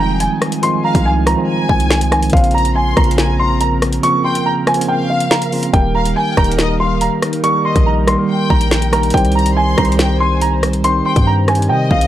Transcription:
Already playing: 808-style bass F1, tine electric piano D#3 F3 G3 G#3 C4 F4, analog synth pad F3 D#4 G#5
0.00 violin section G5, grand piano A#5
0.20 grand piano G#5, closed hi-hat
0.42 cross-stick, closed hi-hat
0.52 closed hi-hat
0.62 tine electric piano D#3 F3 G#3 C4 F4, grand piano C6, closed hi-hat
0.84 violin section F5, grand piano A#5
0.95 808-style bass C2, kick, closed hi-hat
1.05 grand piano G#5
1.26 tine electric piano D#3 F3 G#3 C4 F4, grand piano A#5, cross-stick, closed hi-hat
1.37 tine electric piano D#3 F3 G#3 C4 F4
1.48 violin section G#5
1.69 808-style bass C2, grand piano G#5, kick
1.80 closed hi-hat
1.91 snare
2.01 closed hi-hat
2.11 tine electric piano D#3 F3 G#3 C4 D#4, grand piano G#5, cross-stick, closed hi-hat
2.23 closed hi-hat
2.30 808-style bass A#1, tine electric piano C#3 F3 A#3 C4, analog synth pad C#3 C4 A#4, grand piano F5, kick, closed hi-hat
2.34 tine electric piano F4, closed hi-hat
2.44 closed hi-hat
2.51 violin section A#5, grand piano A#5, closed hi-hat
2.58 closed hi-hat
2.65 closed hi-hat
2.76 grand piano G#5, violin section C6
2.96 808-style bass A#1, tine electric piano C#3 F3 A#3 C4 F4, grand piano A#5, kick, cross-stick, closed hi-hat
3.04 tine electric piano C#3 F3 A#3 C4 F4, closed hi-hat
3.11 closed hi-hat
3.18 violin section G#5, snare
3.40 violin section A#5, grand piano C6
3.61 grand piano A#5, closed hi-hat
3.82 cross-stick, closed hi-hat
3.93 closed hi-hat
4.02 tine electric piano C#3 F3 A#3 C4 F4, grand piano C#6, closed hi-hat
4.25 violin section G5, grand piano C6
4.35 closed hi-hat
4.46 grand piano A#5
4.66 tine electric piano C#3 F3 A#3 C4 F4, grand piano G#5, cross-stick, closed hi-hat
4.74 tine electric piano C#3 F3 A#3 C4 F4, closed hi-hat
4.81 closed hi-hat
4.88 violin section F5, grand piano G5
5.10 grand piano F5
5.20 closed hi-hat
5.31 grand piano A#5, snare
5.42 closed hi-hat
5.51 tine electric piano C#3 F3 A#3 C4 F4, open hi-hat
5.63 closed hi-hat
5.73 808-style bass D#1, tine electric piano D#3 G3 A#3 G4 A#4, analog synth pad G3 D#4, grand piano G5, kick, closed hi-hat
5.95 violin section F5, grand piano A#5
6.05 closed hi-hat
6.16 violin section G5, grand piano G#5
6.37 808-style bass D#1, tine electric piano D#3 G3 A#3 G4 A#4, grand piano A#5, kick, cross-stick, closed hi-hat
6.44 tine electric piano D#3 G3 A#3, closed hi-hat
6.49 tine electric piano G4 A#4, closed hi-hat
6.59 violin section D#5, snare
6.80 violin section F5, grand piano C6
7.01 grand piano A#5, closed hi-hat
7.22 cross-stick, closed hi-hat
7.33 closed hi-hat
7.43 tine electric piano D#3 G3 A#3 G4 A#4, grand piano C#6, closed hi-hat
7.65 violin section D#5, grand piano C6
7.76 808-style bass A#1, kick, closed hi-hat
7.86 grand piano A#5
8.07 tine electric piano D#3 G3 A#3 G4 A#4, grand piano C6, cross-stick, closed hi-hat
8.17 tine electric piano D#3 G3 A#3 G4 A#4
8.29 violin section G5
8.50 808-style bass A#1, grand piano A#5, kick
8.61 closed hi-hat
8.71 snare
8.82 closed hi-hat
8.91 tine electric piano D#3 G3 A#3 G4 A#4, grand piano A#5, cross-stick, closed hi-hat
9.03 closed hi-hat
9.10 808-style bass C2, tine electric piano D#3 G3, analog synth pad C5, grand piano G5, kick, closed hi-hat
9.15 tine electric piano C4 G4 C5, closed hi-hat
9.25 closed hi-hat
9.32 grand piano A#5, violin section A#5, closed hi-hat
9.39 closed hi-hat
9.46 closed hi-hat
9.56 grand piano G#5, violin section C6
9.77 808-style bass C2, tine electric piano D#3 G3 C4 G4 C5, grand piano A#5, kick, cross-stick, closed hi-hat
9.85 tine electric piano D#3 G3 C4, closed hi-hat
9.89 tine electric piano G4 C5, closed hi-hat
9.99 violin section G5, snare
10.20 violin section G#5, grand piano C6
10.41 grand piano A#5, closed hi-hat
10.63 cross-stick, closed hi-hat
10.73 closed hi-hat
10.83 tine electric piano D#3 G3 C4 G4 C5, grand piano C6, closed hi-hat
11.06 violin section G5, grand piano C6
11.16 808-style bass G2, kick, closed hi-hat
11.27 grand piano A#5
11.47 tine electric piano D#3 G3 C4 G4 C5, grand piano G#5, cross-stick, closed hi-hat
11.55 tine electric piano D#3 G3 C4, closed hi-hat
11.59 tine electric piano G4 A#4, closed hi-hat
11.69 808-style bass C3, violin section D#5, grand piano G5
11.91 808-style bass C2, grand piano F5, kick
12.01 closed hi-hat

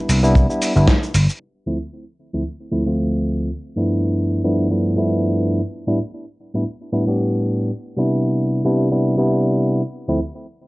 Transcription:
Already playing: tine electric piano G3 B3 D4 E4
0.09 slap bass C2, open hi-hat, cabasa
0.23 tine electric piano G3 B3 D4 E4, cabasa
0.35 kick, cabasa
0.49 tine electric piano G3 B3 D4 E4, cabasa
0.61 open hi-hat, cabasa
0.75 slap bass G1, tine electric piano G3 B3 D4 E4, cabasa
0.87 kick, snare, cabasa
1.03 cabasa
1.14 slap bass G1, open hi-hat, cabasa
1.29 cabasa
1.66 tine electric piano D2 F3 A3 C4 E4
2.33 tine electric piano D2 F3 A3 C4 E4
2.71 tine electric piano D2 F3 A3 C4 E4
2.85 tine electric piano D2 F3 A3 C4 F4
3.76 tine electric piano G2 F3 A3 B3 D4 E4
4.44 tine electric piano G2 F3 A3 B3 D4 E4
4.70 tine electric piano G2 F3 A3 B3 D4 E4
4.96 tine electric piano G2 F3 A3 B3 D4 E4
5.87 tine electric piano A2 G3 B3 D4 E4
6.54 tine electric piano A2 G3 B3 D4 E4
6.92 tine electric piano A2 G3 B3 D4 E4
7.06 tine electric piano A2 G3 B3 D4 G4
7.97 tine electric piano C3 G3 B3 D4 E4
8.65 tine electric piano C3 G3 B3 D4 E4
8.91 tine electric piano C3 G3 B3 D4 E4
9.17 tine electric piano C3 G3 B3 D4 E4
10.08 tine electric piano D2 F3 A3 C4 E4

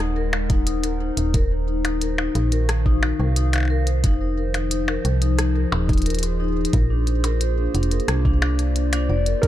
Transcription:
Already playing: fm bass D#1, ambient pad G#3 D#4 A#4 C5 F#5
0.00 vibraphone D#4
0.16 vibraphone A#4
0.33 percussion blips
0.50 vibraphone D#4, kick, closed hi-hat
0.67 vibraphone D#4, closed hi-hat
0.83 vibraphone A#4, closed hi-hat
1.00 vibraphone D#4
1.17 fm bass D#1, vibraphone D#4, closed hi-hat
1.34 ambient pad D#3, vibraphone A#4, kick, closed hi-hat
1.62 ambient pad F#4
1.68 vibraphone D#4
1.85 vibraphone D#4, closed hi-hat, percussion blips
1.98 vibraphone A#4, ambient pad F5, closed hi-hat
2.18 vibraphone D#4, percussion blips
2.35 fm bass A#1, vibraphone D#4, closed hi-hat
2.52 vibraphone A#4, closed hi-hat
2.69 cross-stick, closed hi-hat
2.86 vibraphone D#4, kick
3.03 vibraphone D#4, percussion blips
3.19 fm bass C2, vibraphone A#4
3.36 vibraphone D#4, closed hi-hat
3.53 vibraphone D#4, closed hi-hat, percussion blips
3.56 percussion blips
3.58 percussion blips
3.60 percussion blips
3.63 percussion blips
3.65 percussion blips
3.68 vibraphone A#4, percussion blips
3.87 closed hi-hat
4.04 fm bass F1, ambient pad F3, vibraphone D#4, kick, closed hi-hat
4.21 vibraphone D#4
4.35 ambient pad G#4, vibraphone A#4
4.48 ambient pad F4
4.54 vibraphone D#4, closed hi-hat, percussion blips
4.71 vibraphone D#4, closed hi-hat
4.88 vibraphone A#4, percussion blips
5.05 fm bass C2, closed hi-hat
5.22 vibraphone D#4, ambient pad D#5, closed hi-hat
5.38 vibraphone D#4, cross-stick, closed hi-hat
5.55 vibraphone A#4
5.72 fm bass D#1, vibraphone D#4, percussion blips
5.89 vibraphone D#4, kick, closed hi-hat
5.93 closed hi-hat
5.98 closed hi-hat
6.02 closed hi-hat
6.06 vibraphone A#4, closed hi-hat
6.10 closed hi-hat
6.15 closed hi-hat
6.19 closed hi-hat
6.23 closed hi-hat
6.40 vibraphone D#4
6.57 vibraphone D#4
6.65 closed hi-hat
6.73 fm bass A#1, ambient pad A#3, vibraphone A#4, kick, closed hi-hat
6.90 vibraphone D4
7.07 vibraphone D4, closed hi-hat
7.24 vibraphone A#4, closed hi-hat, percussion blips
7.41 closed hi-hat
7.58 vibraphone D4
7.75 fm bass F1, vibraphone D4, closed hi-hat
7.83 closed hi-hat
7.91 vibraphone A#4, ambient pad D5, closed hi-hat
8.00 closed hi-hat
8.08 fm bass C2, vibraphone D4, cross-stick, closed hi-hat
8.25 vibraphone D4, kick
8.42 vibraphone D4, closed hi-hat, percussion blips
8.59 closed hi-hat
8.76 vibraphone D4, closed hi-hat
8.93 vibraphone D4, closed hi-hat, percussion blips
9.09 fm bass F1, vibraphone D5
9.26 vibraphone A#4, closed hi-hat
9.42 fm bass G#1, vibraphone D#4, felt piano A#4, kick, closed hi-hat

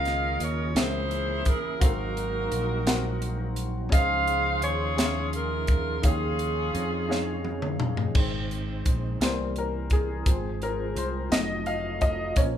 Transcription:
Already playing: fingered electric bass C#2, upright piano C#3 C#4 F4 A#4 D#5, tonewheel organ D#3 A#3 C#4 F4, saxophone section G#4 A#4 F5
0.05 snare, closed hi-hat
0.40 fingered electric bass D#2, saxophone section C#5, closed hi-hat
0.75 fingered electric bass C#2, upright piano C#3 C#4 G#4 A#4 E5, tonewheel organ E3 G#4, saxophone section E4 G#4, snare, closed hi-hat
0.80 saxophone section C5
1.11 closed hi-hat
1.45 saxophone section A#4, kick, closed hi-hat
1.80 fingered electric bass G#1, upright piano G#2 C4 F#4 A#4 F5, tonewheel organ F#3 D#4 F#4, saxophone section D#4 F#4, kick, closed hi-hat
1.85 saxophone section A#4
2.17 closed hi-hat
2.52 fingered electric bass A#1, closed hi-hat
2.86 upright piano C4 F#4 A#4 F#5, snare, closed hi-hat
3.22 closed hi-hat
3.56 closed hi-hat
3.90 fingered electric bass C#2, upright piano C#3 C#4 G#4 C5 D#5, tonewheel organ F3 C#4 G#4, saxophone section C5 F5, kick, closed hi-hat
3.94 saxophone section G#4
3.99 upright piano F5
4.28 closed hi-hat
4.62 fingered electric bass D#2, saxophone section F4 G#4 C#5, closed hi-hat
4.97 upright piano C#4 G#4 E5 C6, snare, closed hi-hat
5.05 upright piano F5
5.33 saxophone section F4 A#4, closed hi-hat
5.67 kick, closed hi-hat
6.02 fingered electric bass D#2, upright piano D#3 D#4 G4 C#5 F5, tonewheel organ D#4, kick, closed hi-hat
6.06 saxophone section C#4 F4 G#4, upright piano G#4
6.39 closed hi-hat
6.75 fingered electric bass F2, closed hi-hat
7.08 upright piano D#4 G#4 C#5 F5, snare
7.45 high tom
7.62 mid tom
7.80 mid tom
7.97 floor tom
8.14 fingered electric bass G#1, upright piano D#3 G#3 C4, tonewheel organ G#3 C4 D#4 C5, kick, crash
8.51 closed hi-hat
8.86 fingered electric bass A#1, kick, closed hi-hat
9.21 fingered electric bass C2, upright piano E3 G3 A#3 C5, tonewheel organ E3 E4 A#4, snare, closed hi-hat
9.56 upright piano A#4, closed hi-hat
9.90 upright piano G#4, kick, closed hi-hat
10.26 fingered electric bass G#1, upright piano F3 G#3 C4, tonewheel organ G#3 F4 C5, kick, closed hi-hat
10.62 upright piano A#4, closed hi-hat
10.95 fingered electric bass C2, upright piano C5, closed hi-hat
11.30 fingered electric bass F1, upright piano F#3 A3 D#4 D#5, tonewheel organ A3 F#4 D#5, snare, closed hi-hat
11.66 upright piano F5, closed hi-hat
12.01 upright piano D#5, kick, closed hi-hat
12.36 fingered electric bass A#1, upright piano F3 A#3 C#4 C#5, tonewheel organ A#3 C#4 C#5, kick, closed hi-hat

